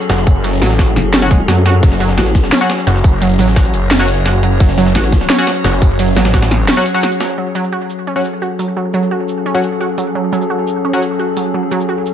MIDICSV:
0, 0, Header, 1, 7, 480
1, 0, Start_track
1, 0, Key_signature, 3, "minor"
1, 0, Tempo, 346821
1, 612, Time_signature, 4, 2, 24, 8
1, 16798, End_track
2, 0, Start_track
2, 0, Title_t, "Synth drone"
2, 0, Program_c, 0, 95
2, 0, Note_on_c, 0, 54, 76
2, 0, Note_on_c, 0, 61, 71
2, 0, Note_on_c, 0, 68, 71
2, 0, Note_on_c, 0, 69, 84
2, 2500, Note_off_c, 0, 69, 0
2, 2530, Note_on_c, 0, 73, 85
2, 10156, Note_off_c, 0, 54, 0
2, 10156, Note_off_c, 0, 61, 0
2, 10156, Note_off_c, 0, 68, 0
2, 10179, Note_off_c, 0, 73, 0
2, 10210, Note_on_c, 0, 54, 74
2, 10210, Note_on_c, 0, 61, 68
2, 10210, Note_on_c, 0, 69, 81
2, 10211, Note_on_c, 0, 68, 72
2, 16798, Note_off_c, 0, 54, 0
2, 16798, Note_off_c, 0, 61, 0
2, 16798, Note_off_c, 0, 68, 0
2, 16798, Note_off_c, 0, 69, 0
2, 16798, End_track
3, 0, Start_track
3, 0, Title_t, "Synth stab"
3, 0, Program_c, 1, 62
3, 1692, Note_on_c, 1, 54, 93
3, 1692, Note_on_c, 1, 61, 87
3, 1692, Note_on_c, 1, 66, 104
3, 1789, Note_off_c, 1, 54, 0
3, 1789, Note_off_c, 1, 61, 0
3, 1789, Note_off_c, 1, 66, 0
3, 3611, Note_on_c, 1, 54, 91
3, 3611, Note_on_c, 1, 66, 101
3, 3612, Note_on_c, 1, 61, 88
3, 3709, Note_off_c, 1, 54, 0
3, 3709, Note_off_c, 1, 61, 0
3, 3709, Note_off_c, 1, 66, 0
3, 5530, Note_on_c, 1, 54, 93
3, 5530, Note_on_c, 1, 61, 85
3, 5530, Note_on_c, 1, 66, 103
3, 5628, Note_off_c, 1, 54, 0
3, 5628, Note_off_c, 1, 61, 0
3, 5628, Note_off_c, 1, 66, 0
3, 7451, Note_on_c, 1, 66, 99
3, 7452, Note_on_c, 1, 54, 96
3, 7452, Note_on_c, 1, 61, 86
3, 7549, Note_off_c, 1, 54, 0
3, 7549, Note_off_c, 1, 61, 0
3, 7549, Note_off_c, 1, 66, 0
3, 9371, Note_on_c, 1, 54, 95
3, 9371, Note_on_c, 1, 61, 87
3, 9371, Note_on_c, 1, 66, 104
3, 9468, Note_off_c, 1, 54, 0
3, 9468, Note_off_c, 1, 61, 0
3, 9468, Note_off_c, 1, 66, 0
3, 9610, Note_on_c, 1, 61, 76
3, 9611, Note_on_c, 1, 54, 78
3, 9611, Note_on_c, 1, 66, 92
3, 9767, Note_off_c, 1, 54, 0
3, 9767, Note_off_c, 1, 61, 0
3, 9767, Note_off_c, 1, 66, 0
3, 11290, Note_on_c, 1, 66, 99
3, 11291, Note_on_c, 1, 54, 93
3, 11291, Note_on_c, 1, 61, 83
3, 11388, Note_off_c, 1, 54, 0
3, 11388, Note_off_c, 1, 61, 0
3, 11388, Note_off_c, 1, 66, 0
3, 13210, Note_on_c, 1, 61, 84
3, 13211, Note_on_c, 1, 54, 92
3, 13211, Note_on_c, 1, 66, 102
3, 13308, Note_off_c, 1, 54, 0
3, 13308, Note_off_c, 1, 61, 0
3, 13308, Note_off_c, 1, 66, 0
3, 15132, Note_on_c, 1, 54, 91
3, 15132, Note_on_c, 1, 61, 83
3, 15132, Note_on_c, 1, 66, 101
3, 15229, Note_off_c, 1, 54, 0
3, 15229, Note_off_c, 1, 61, 0
3, 15229, Note_off_c, 1, 66, 0
3, 16798, End_track
4, 0, Start_track
4, 0, Title_t, "Synth arpeggio sound"
4, 0, Program_c, 2, 84
4, 131, Note_on_c, 2, 66, 72
4, 332, Note_off_c, 2, 66, 0
4, 371, Note_on_c, 2, 54, 77
4, 452, Note_off_c, 2, 54, 0
4, 612, Note_on_c, 2, 54, 84
4, 746, Note_off_c, 2, 54, 0
4, 852, Note_on_c, 2, 54, 102
4, 986, Note_off_c, 2, 54, 0
4, 1092, Note_on_c, 2, 66, 74
4, 1293, Note_off_c, 2, 66, 0
4, 1572, Note_on_c, 2, 61, 83
4, 1652, Note_off_c, 2, 61, 0
4, 1812, Note_on_c, 2, 56, 100
4, 1892, Note_off_c, 2, 56, 0
4, 2053, Note_on_c, 2, 54, 100
4, 2186, Note_off_c, 2, 54, 0
4, 2293, Note_on_c, 2, 66, 102
4, 2426, Note_off_c, 2, 66, 0
4, 2532, Note_on_c, 2, 54, 85
4, 2666, Note_off_c, 2, 54, 0
4, 2772, Note_on_c, 2, 54, 99
4, 2906, Note_off_c, 2, 54, 0
4, 3011, Note_on_c, 2, 66, 76
4, 3213, Note_off_c, 2, 66, 0
4, 3490, Note_on_c, 2, 61, 82
4, 3571, Note_off_c, 2, 61, 0
4, 3971, Note_on_c, 2, 66, 73
4, 4172, Note_off_c, 2, 66, 0
4, 4211, Note_on_c, 2, 54, 76
4, 4292, Note_off_c, 2, 54, 0
4, 4451, Note_on_c, 2, 54, 82
4, 4585, Note_off_c, 2, 54, 0
4, 4691, Note_on_c, 2, 54, 104
4, 4825, Note_off_c, 2, 54, 0
4, 4931, Note_on_c, 2, 66, 75
4, 5133, Note_off_c, 2, 66, 0
4, 5411, Note_on_c, 2, 61, 84
4, 5492, Note_off_c, 2, 61, 0
4, 5891, Note_on_c, 2, 66, 74
4, 6093, Note_off_c, 2, 66, 0
4, 6132, Note_on_c, 2, 54, 81
4, 6212, Note_off_c, 2, 54, 0
4, 6372, Note_on_c, 2, 54, 86
4, 6506, Note_off_c, 2, 54, 0
4, 6611, Note_on_c, 2, 54, 106
4, 6746, Note_off_c, 2, 54, 0
4, 6852, Note_on_c, 2, 66, 79
4, 7053, Note_off_c, 2, 66, 0
4, 7332, Note_on_c, 2, 61, 87
4, 7412, Note_off_c, 2, 61, 0
4, 7812, Note_on_c, 2, 66, 73
4, 8013, Note_off_c, 2, 66, 0
4, 8052, Note_on_c, 2, 54, 78
4, 8132, Note_off_c, 2, 54, 0
4, 8293, Note_on_c, 2, 54, 86
4, 8426, Note_off_c, 2, 54, 0
4, 8531, Note_on_c, 2, 54, 101
4, 8665, Note_off_c, 2, 54, 0
4, 8772, Note_on_c, 2, 66, 79
4, 8973, Note_off_c, 2, 66, 0
4, 9251, Note_on_c, 2, 61, 85
4, 9332, Note_off_c, 2, 61, 0
4, 9732, Note_on_c, 2, 66, 76
4, 9933, Note_off_c, 2, 66, 0
4, 9972, Note_on_c, 2, 54, 79
4, 10052, Note_off_c, 2, 54, 0
4, 10212, Note_on_c, 2, 54, 80
4, 10346, Note_off_c, 2, 54, 0
4, 10450, Note_on_c, 2, 54, 103
4, 10585, Note_off_c, 2, 54, 0
4, 10691, Note_on_c, 2, 66, 72
4, 10892, Note_off_c, 2, 66, 0
4, 11172, Note_on_c, 2, 61, 80
4, 11252, Note_off_c, 2, 61, 0
4, 11652, Note_on_c, 2, 66, 70
4, 11853, Note_off_c, 2, 66, 0
4, 11891, Note_on_c, 2, 54, 75
4, 11972, Note_off_c, 2, 54, 0
4, 12132, Note_on_c, 2, 54, 84
4, 12266, Note_off_c, 2, 54, 0
4, 12371, Note_on_c, 2, 54, 98
4, 12506, Note_off_c, 2, 54, 0
4, 12612, Note_on_c, 2, 66, 72
4, 12813, Note_off_c, 2, 66, 0
4, 13091, Note_on_c, 2, 61, 81
4, 13172, Note_off_c, 2, 61, 0
4, 13571, Note_on_c, 2, 66, 74
4, 13773, Note_off_c, 2, 66, 0
4, 13811, Note_on_c, 2, 54, 78
4, 13892, Note_off_c, 2, 54, 0
4, 14051, Note_on_c, 2, 54, 81
4, 14185, Note_off_c, 2, 54, 0
4, 14291, Note_on_c, 2, 54, 101
4, 14425, Note_off_c, 2, 54, 0
4, 14532, Note_on_c, 2, 66, 75
4, 14733, Note_off_c, 2, 66, 0
4, 15012, Note_on_c, 2, 61, 79
4, 15092, Note_off_c, 2, 61, 0
4, 15492, Note_on_c, 2, 66, 73
4, 15693, Note_off_c, 2, 66, 0
4, 15733, Note_on_c, 2, 54, 75
4, 15813, Note_off_c, 2, 54, 0
4, 15973, Note_on_c, 2, 54, 83
4, 16106, Note_off_c, 2, 54, 0
4, 16213, Note_on_c, 2, 54, 98
4, 16346, Note_off_c, 2, 54, 0
4, 16453, Note_on_c, 2, 66, 76
4, 16653, Note_off_c, 2, 66, 0
4, 16798, End_track
5, 0, Start_track
5, 0, Title_t, "Wobble bass"
5, 0, Program_c, 3, 39
5, 1331, Note_on_c, 3, 30, 100
5, 2032, Note_off_c, 3, 30, 0
5, 2052, Note_on_c, 3, 42, 95
5, 2513, Note_off_c, 3, 42, 0
5, 3011, Note_on_c, 3, 33, 94
5, 3472, Note_off_c, 3, 33, 0
5, 6851, Note_on_c, 3, 33, 100
5, 7312, Note_off_c, 3, 33, 0
5, 16798, End_track
6, 0, Start_track
6, 0, Title_t, "Detuned saw bass"
6, 0, Program_c, 4, 39
6, 130, Note_on_c, 4, 30, 97
6, 832, Note_off_c, 4, 30, 0
6, 851, Note_on_c, 4, 33, 94
6, 1312, Note_off_c, 4, 33, 0
6, 2531, Note_on_c, 4, 30, 96
6, 2992, Note_off_c, 4, 30, 0
6, 3971, Note_on_c, 4, 30, 98
6, 4672, Note_off_c, 4, 30, 0
6, 4691, Note_on_c, 4, 33, 96
6, 5152, Note_off_c, 4, 33, 0
6, 5172, Note_on_c, 4, 30, 92
6, 6352, Note_off_c, 4, 30, 0
6, 6371, Note_on_c, 4, 30, 99
6, 6832, Note_off_c, 4, 30, 0
6, 7811, Note_on_c, 4, 30, 97
6, 8512, Note_off_c, 4, 30, 0
6, 8532, Note_on_c, 4, 33, 97
6, 8992, Note_off_c, 4, 33, 0
6, 9011, Note_on_c, 4, 33, 97
6, 9251, Note_off_c, 4, 33, 0
6, 16798, End_track
7, 0, Start_track
7, 0, Title_t, "Drums"
7, 13, Note_on_c, 9, 42, 45
7, 132, Note_off_c, 9, 42, 0
7, 132, Note_on_c, 9, 42, 91
7, 133, Note_off_c, 9, 42, 0
7, 133, Note_on_c, 9, 38, 111
7, 133, Note_on_c, 9, 42, 87
7, 253, Note_off_c, 9, 38, 0
7, 253, Note_on_c, 9, 38, 50
7, 271, Note_off_c, 9, 42, 0
7, 371, Note_on_c, 9, 36, 111
7, 373, Note_on_c, 9, 42, 69
7, 392, Note_off_c, 9, 38, 0
7, 510, Note_off_c, 9, 36, 0
7, 512, Note_off_c, 9, 42, 0
7, 612, Note_on_c, 9, 42, 83
7, 733, Note_off_c, 9, 42, 0
7, 733, Note_on_c, 9, 42, 44
7, 852, Note_off_c, 9, 42, 0
7, 852, Note_on_c, 9, 40, 55
7, 852, Note_on_c, 9, 42, 62
7, 852, Note_on_c, 9, 46, 81
7, 973, Note_on_c, 9, 38, 45
7, 991, Note_off_c, 9, 40, 0
7, 991, Note_off_c, 9, 42, 0
7, 991, Note_off_c, 9, 46, 0
7, 1091, Note_on_c, 9, 36, 62
7, 1093, Note_off_c, 9, 38, 0
7, 1093, Note_on_c, 9, 38, 116
7, 1093, Note_on_c, 9, 42, 87
7, 1212, Note_off_c, 9, 42, 0
7, 1212, Note_on_c, 9, 42, 37
7, 1230, Note_off_c, 9, 36, 0
7, 1231, Note_off_c, 9, 38, 0
7, 1333, Note_off_c, 9, 42, 0
7, 1333, Note_on_c, 9, 40, 55
7, 1333, Note_on_c, 9, 42, 66
7, 1471, Note_off_c, 9, 40, 0
7, 1471, Note_off_c, 9, 42, 0
7, 1572, Note_on_c, 9, 42, 84
7, 1573, Note_off_c, 9, 42, 0
7, 1573, Note_on_c, 9, 38, 125
7, 1573, Note_on_c, 9, 42, 90
7, 1692, Note_off_c, 9, 42, 0
7, 1692, Note_on_c, 9, 42, 35
7, 1711, Note_off_c, 9, 38, 0
7, 1812, Note_off_c, 9, 42, 0
7, 1812, Note_on_c, 9, 36, 101
7, 1812, Note_on_c, 9, 42, 65
7, 1813, Note_off_c, 9, 42, 0
7, 1813, Note_on_c, 9, 42, 69
7, 1950, Note_off_c, 9, 36, 0
7, 1952, Note_off_c, 9, 42, 0
7, 2052, Note_on_c, 9, 40, 52
7, 2052, Note_on_c, 9, 42, 88
7, 2053, Note_off_c, 9, 42, 0
7, 2053, Note_on_c, 9, 38, 112
7, 2053, Note_on_c, 9, 42, 90
7, 2190, Note_off_c, 9, 40, 0
7, 2191, Note_off_c, 9, 38, 0
7, 2191, Note_off_c, 9, 42, 0
7, 2292, Note_on_c, 9, 42, 63
7, 2293, Note_off_c, 9, 42, 0
7, 2293, Note_on_c, 9, 38, 104
7, 2293, Note_on_c, 9, 42, 76
7, 2431, Note_off_c, 9, 38, 0
7, 2431, Note_off_c, 9, 42, 0
7, 2531, Note_on_c, 9, 36, 118
7, 2532, Note_on_c, 9, 42, 85
7, 2533, Note_off_c, 9, 42, 0
7, 2533, Note_on_c, 9, 42, 84
7, 2653, Note_on_c, 9, 38, 45
7, 2670, Note_off_c, 9, 36, 0
7, 2672, Note_off_c, 9, 42, 0
7, 2772, Note_on_c, 9, 42, 64
7, 2773, Note_off_c, 9, 38, 0
7, 2773, Note_off_c, 9, 42, 0
7, 2773, Note_on_c, 9, 38, 45
7, 2773, Note_on_c, 9, 42, 68
7, 2893, Note_off_c, 9, 38, 0
7, 2893, Note_on_c, 9, 38, 52
7, 2912, Note_off_c, 9, 42, 0
7, 3011, Note_on_c, 9, 42, 85
7, 3013, Note_off_c, 9, 38, 0
7, 3013, Note_off_c, 9, 42, 0
7, 3013, Note_on_c, 9, 38, 113
7, 3013, Note_on_c, 9, 42, 88
7, 3132, Note_off_c, 9, 42, 0
7, 3132, Note_on_c, 9, 42, 35
7, 3133, Note_off_c, 9, 38, 0
7, 3133, Note_on_c, 9, 38, 47
7, 3251, Note_on_c, 9, 36, 62
7, 3252, Note_off_c, 9, 38, 0
7, 3252, Note_off_c, 9, 42, 0
7, 3252, Note_on_c, 9, 38, 53
7, 3252, Note_on_c, 9, 42, 68
7, 3372, Note_off_c, 9, 38, 0
7, 3372, Note_on_c, 9, 38, 53
7, 3390, Note_off_c, 9, 36, 0
7, 3391, Note_off_c, 9, 42, 0
7, 3492, Note_off_c, 9, 38, 0
7, 3492, Note_on_c, 9, 38, 125
7, 3492, Note_on_c, 9, 42, 87
7, 3630, Note_off_c, 9, 38, 0
7, 3631, Note_off_c, 9, 42, 0
7, 3732, Note_on_c, 9, 38, 105
7, 3732, Note_on_c, 9, 42, 64
7, 3852, Note_off_c, 9, 38, 0
7, 3852, Note_on_c, 9, 38, 43
7, 3870, Note_off_c, 9, 42, 0
7, 3972, Note_off_c, 9, 38, 0
7, 3972, Note_on_c, 9, 38, 48
7, 3972, Note_on_c, 9, 42, 91
7, 4092, Note_off_c, 9, 38, 0
7, 4092, Note_on_c, 9, 38, 49
7, 4111, Note_off_c, 9, 42, 0
7, 4211, Note_on_c, 9, 36, 106
7, 4211, Note_on_c, 9, 42, 79
7, 4212, Note_off_c, 9, 42, 0
7, 4212, Note_on_c, 9, 42, 64
7, 4230, Note_off_c, 9, 38, 0
7, 4349, Note_off_c, 9, 36, 0
7, 4351, Note_off_c, 9, 42, 0
7, 4452, Note_on_c, 9, 42, 91
7, 4572, Note_off_c, 9, 42, 0
7, 4572, Note_on_c, 9, 42, 45
7, 4691, Note_off_c, 9, 42, 0
7, 4691, Note_on_c, 9, 42, 65
7, 4691, Note_on_c, 9, 46, 81
7, 4812, Note_on_c, 9, 38, 45
7, 4830, Note_off_c, 9, 42, 0
7, 4830, Note_off_c, 9, 46, 0
7, 4931, Note_off_c, 9, 38, 0
7, 4931, Note_on_c, 9, 36, 100
7, 4931, Note_on_c, 9, 38, 113
7, 4931, Note_on_c, 9, 42, 89
7, 4932, Note_off_c, 9, 42, 0
7, 4932, Note_on_c, 9, 42, 86
7, 5051, Note_off_c, 9, 42, 0
7, 5051, Note_on_c, 9, 42, 37
7, 5069, Note_off_c, 9, 36, 0
7, 5069, Note_off_c, 9, 38, 0
7, 5171, Note_off_c, 9, 42, 0
7, 5171, Note_on_c, 9, 42, 66
7, 5172, Note_off_c, 9, 42, 0
7, 5172, Note_on_c, 9, 42, 69
7, 5310, Note_off_c, 9, 42, 0
7, 5411, Note_on_c, 9, 42, 89
7, 5412, Note_off_c, 9, 42, 0
7, 5412, Note_on_c, 9, 38, 117
7, 5412, Note_on_c, 9, 42, 95
7, 5532, Note_off_c, 9, 42, 0
7, 5532, Note_on_c, 9, 42, 38
7, 5550, Note_off_c, 9, 38, 0
7, 5651, Note_off_c, 9, 42, 0
7, 5651, Note_on_c, 9, 42, 69
7, 5652, Note_off_c, 9, 42, 0
7, 5652, Note_on_c, 9, 42, 66
7, 5790, Note_off_c, 9, 42, 0
7, 5891, Note_on_c, 9, 38, 113
7, 5891, Note_on_c, 9, 42, 92
7, 6029, Note_off_c, 9, 38, 0
7, 6030, Note_off_c, 9, 42, 0
7, 6132, Note_on_c, 9, 42, 68
7, 6270, Note_off_c, 9, 42, 0
7, 6371, Note_on_c, 9, 42, 94
7, 6372, Note_off_c, 9, 42, 0
7, 6372, Note_on_c, 9, 36, 113
7, 6372, Note_on_c, 9, 42, 86
7, 6492, Note_on_c, 9, 38, 46
7, 6510, Note_off_c, 9, 36, 0
7, 6510, Note_off_c, 9, 42, 0
7, 6612, Note_off_c, 9, 38, 0
7, 6612, Note_on_c, 9, 38, 45
7, 6612, Note_on_c, 9, 42, 68
7, 6732, Note_off_c, 9, 38, 0
7, 6732, Note_on_c, 9, 38, 53
7, 6751, Note_off_c, 9, 42, 0
7, 6851, Note_off_c, 9, 38, 0
7, 6851, Note_on_c, 9, 38, 118
7, 6851, Note_on_c, 9, 42, 87
7, 6852, Note_off_c, 9, 42, 0
7, 6852, Note_on_c, 9, 40, 31
7, 6852, Note_on_c, 9, 42, 94
7, 6973, Note_off_c, 9, 38, 0
7, 6973, Note_off_c, 9, 42, 0
7, 6973, Note_on_c, 9, 38, 46
7, 6973, Note_on_c, 9, 42, 39
7, 6991, Note_off_c, 9, 40, 0
7, 7091, Note_on_c, 9, 36, 60
7, 7092, Note_off_c, 9, 38, 0
7, 7092, Note_off_c, 9, 42, 0
7, 7092, Note_on_c, 9, 38, 55
7, 7092, Note_on_c, 9, 42, 72
7, 7213, Note_off_c, 9, 38, 0
7, 7213, Note_on_c, 9, 38, 55
7, 7230, Note_off_c, 9, 36, 0
7, 7231, Note_off_c, 9, 42, 0
7, 7331, Note_off_c, 9, 38, 0
7, 7331, Note_on_c, 9, 38, 119
7, 7331, Note_on_c, 9, 42, 98
7, 7332, Note_off_c, 9, 42, 0
7, 7332, Note_on_c, 9, 42, 85
7, 7470, Note_off_c, 9, 38, 0
7, 7471, Note_off_c, 9, 42, 0
7, 7571, Note_on_c, 9, 42, 67
7, 7572, Note_off_c, 9, 42, 0
7, 7572, Note_on_c, 9, 38, 108
7, 7572, Note_on_c, 9, 42, 81
7, 7692, Note_off_c, 9, 42, 0
7, 7692, Note_on_c, 9, 42, 44
7, 7711, Note_off_c, 9, 38, 0
7, 7812, Note_off_c, 9, 42, 0
7, 7812, Note_on_c, 9, 38, 106
7, 7812, Note_on_c, 9, 42, 90
7, 7932, Note_off_c, 9, 38, 0
7, 7932, Note_on_c, 9, 38, 49
7, 7950, Note_off_c, 9, 42, 0
7, 8051, Note_on_c, 9, 36, 98
7, 8052, Note_on_c, 9, 42, 70
7, 8070, Note_off_c, 9, 38, 0
7, 8190, Note_off_c, 9, 36, 0
7, 8191, Note_off_c, 9, 42, 0
7, 8292, Note_on_c, 9, 42, 89
7, 8412, Note_off_c, 9, 42, 0
7, 8412, Note_on_c, 9, 42, 46
7, 8532, Note_off_c, 9, 42, 0
7, 8532, Note_on_c, 9, 38, 104
7, 8532, Note_on_c, 9, 40, 57
7, 8532, Note_on_c, 9, 42, 81
7, 8652, Note_off_c, 9, 38, 0
7, 8652, Note_off_c, 9, 42, 0
7, 8652, Note_on_c, 9, 38, 107
7, 8652, Note_on_c, 9, 42, 82
7, 8670, Note_off_c, 9, 40, 0
7, 8771, Note_off_c, 9, 38, 0
7, 8771, Note_off_c, 9, 42, 0
7, 8771, Note_on_c, 9, 36, 59
7, 8771, Note_on_c, 9, 38, 101
7, 8771, Note_on_c, 9, 42, 80
7, 8772, Note_off_c, 9, 42, 0
7, 8772, Note_on_c, 9, 42, 90
7, 8891, Note_off_c, 9, 38, 0
7, 8891, Note_off_c, 9, 42, 0
7, 8891, Note_on_c, 9, 38, 101
7, 8891, Note_on_c, 9, 42, 79
7, 8892, Note_off_c, 9, 42, 0
7, 8892, Note_on_c, 9, 42, 40
7, 8909, Note_off_c, 9, 36, 0
7, 9012, Note_off_c, 9, 42, 0
7, 9012, Note_on_c, 9, 40, 57
7, 9012, Note_on_c, 9, 42, 70
7, 9029, Note_off_c, 9, 38, 0
7, 9151, Note_off_c, 9, 40, 0
7, 9151, Note_off_c, 9, 42, 0
7, 9251, Note_on_c, 9, 38, 48
7, 9251, Note_on_c, 9, 42, 59
7, 9252, Note_off_c, 9, 38, 0
7, 9252, Note_off_c, 9, 42, 0
7, 9252, Note_on_c, 9, 38, 118
7, 9252, Note_on_c, 9, 42, 100
7, 9371, Note_off_c, 9, 38, 0
7, 9371, Note_on_c, 9, 38, 49
7, 9372, Note_off_c, 9, 42, 0
7, 9372, Note_on_c, 9, 42, 40
7, 9491, Note_off_c, 9, 42, 0
7, 9491, Note_on_c, 9, 42, 83
7, 9492, Note_off_c, 9, 42, 0
7, 9492, Note_on_c, 9, 42, 72
7, 9509, Note_off_c, 9, 38, 0
7, 9613, Note_off_c, 9, 42, 0
7, 9613, Note_on_c, 9, 42, 39
7, 9732, Note_off_c, 9, 42, 0
7, 9732, Note_on_c, 9, 40, 54
7, 9732, Note_on_c, 9, 42, 92
7, 9851, Note_off_c, 9, 42, 0
7, 9851, Note_on_c, 9, 42, 63
7, 9871, Note_off_c, 9, 40, 0
7, 9971, Note_off_c, 9, 42, 0
7, 9971, Note_on_c, 9, 38, 103
7, 9971, Note_on_c, 9, 42, 79
7, 9972, Note_off_c, 9, 42, 0
7, 9972, Note_on_c, 9, 42, 69
7, 10109, Note_off_c, 9, 38, 0
7, 10110, Note_off_c, 9, 42, 0
7, 10452, Note_on_c, 9, 82, 57
7, 10572, Note_off_c, 9, 82, 0
7, 10572, Note_on_c, 9, 82, 26
7, 10711, Note_off_c, 9, 82, 0
7, 10932, Note_on_c, 9, 82, 55
7, 11071, Note_off_c, 9, 82, 0
7, 11412, Note_on_c, 9, 82, 57
7, 11551, Note_off_c, 9, 82, 0
7, 11653, Note_on_c, 9, 82, 25
7, 11791, Note_off_c, 9, 82, 0
7, 11892, Note_on_c, 9, 46, 73
7, 11892, Note_on_c, 9, 82, 57
7, 12031, Note_off_c, 9, 46, 0
7, 12031, Note_off_c, 9, 82, 0
7, 12372, Note_on_c, 9, 82, 55
7, 12492, Note_off_c, 9, 82, 0
7, 12492, Note_on_c, 9, 82, 25
7, 12631, Note_off_c, 9, 82, 0
7, 12852, Note_on_c, 9, 82, 55
7, 12990, Note_off_c, 9, 82, 0
7, 13332, Note_on_c, 9, 82, 54
7, 13470, Note_off_c, 9, 82, 0
7, 13572, Note_on_c, 9, 82, 24
7, 13710, Note_off_c, 9, 82, 0
7, 13812, Note_on_c, 9, 46, 71
7, 13812, Note_on_c, 9, 82, 53
7, 13950, Note_off_c, 9, 46, 0
7, 13950, Note_off_c, 9, 82, 0
7, 14292, Note_on_c, 9, 82, 55
7, 14412, Note_off_c, 9, 82, 0
7, 14412, Note_on_c, 9, 82, 25
7, 14551, Note_off_c, 9, 82, 0
7, 14772, Note_on_c, 9, 82, 55
7, 14911, Note_off_c, 9, 82, 0
7, 15253, Note_on_c, 9, 82, 55
7, 15391, Note_off_c, 9, 82, 0
7, 15493, Note_on_c, 9, 82, 25
7, 15631, Note_off_c, 9, 82, 0
7, 15733, Note_on_c, 9, 46, 74
7, 15733, Note_on_c, 9, 82, 55
7, 15871, Note_off_c, 9, 46, 0
7, 15871, Note_off_c, 9, 82, 0
7, 16214, Note_on_c, 9, 82, 56
7, 16333, Note_off_c, 9, 82, 0
7, 16333, Note_on_c, 9, 82, 25
7, 16472, Note_off_c, 9, 82, 0
7, 16693, Note_on_c, 9, 82, 55
7, 16798, Note_off_c, 9, 82, 0
7, 16798, End_track
0, 0, End_of_file